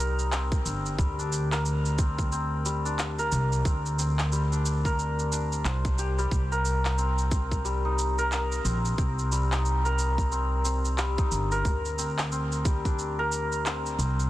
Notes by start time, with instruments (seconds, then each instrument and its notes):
Already playing: upright bass C2, santur G3 C4 D#4 A#4
0.19 cabasa
0.32 santur C4, clap, cabasa
0.52 kick, cabasa
0.65 upright bass G1, santur C4, cabasa
0.86 cabasa
0.98 upright bass D2, santur G3, kick, cabasa
1.19 santur D4, cabasa
1.32 cabasa
1.52 santur A#4, clap, cabasa
1.66 cabasa
1.85 cabasa
1.99 santur C4, kick, cabasa
2.19 kick, cabasa
2.32 santur C4, cabasa
2.66 santur G3, cabasa
2.85 santur D4, cabasa
2.99 clap, cabasa
3.19 santur A#4, cabasa
3.32 upright bass C2, cabasa
3.52 cabasa
3.65 upright bass D2, santur C4, kick, cabasa
3.86 cabasa
3.99 santur C4, cabasa
4.19 clap, cabasa
4.32 santur G3, cabasa
4.52 santur D4, cabasa
4.66 cabasa
4.85 santur A#4, kick, cabasa
4.99 cabasa
5.19 cabasa
5.32 santur D4, cabasa
5.52 cabasa
5.65 upright bass C2, santur C5, clap, cabasa
5.85 kick, cabasa
5.99 santur G4, cabasa
6.18 santur G3, cabasa
6.31 upright bass C2, kick, cabasa
6.52 santur A#4, cabasa
6.65 cabasa
6.85 clap, cabasa
6.98 santur C4, cabasa
7.18 cabasa
7.31 santur C4, kick, cabasa
7.52 kick, cabasa
7.65 santur G3, cabasa
7.85 santur D#4
7.99 cabasa
8.18 santur A#4, cabasa
8.32 clap, cabasa
8.52 cabasa
8.65 upright bass A#1, santur C4, cabasa
8.85 cabasa
8.98 upright bass C2, santur C4, kick, cabasa
9.19 cabasa
9.32 santur G3, cabasa
9.52 santur D#4, clap, cabasa
9.65 cabasa
9.85 santur A#4, cabasa
9.99 cabasa
10.18 kick, cabasa
10.32 santur C4, cabasa
10.64 santur C4, cabasa
10.85 cabasa
10.98 santur G3, clap, cabasa
11.18 santur D#4, kick, cabasa
11.32 upright bass G1, cabasa
11.52 santur A#4, cabasa
11.65 upright bass D2, kick, cabasa
11.85 cabasa
11.98 santur C4, cabasa
12.18 clap, cabasa
12.32 santur C4, cabasa
12.52 cabasa
12.65 santur G3, kick, cabasa
12.85 santur D4, kick, cabasa
12.99 cabasa
13.19 santur A#4
13.32 cabasa
13.52 cabasa
13.65 santur C4, clap, cabasa
13.86 cabasa
13.98 upright bass C2, santur C4, cabasa
14.20 cabasa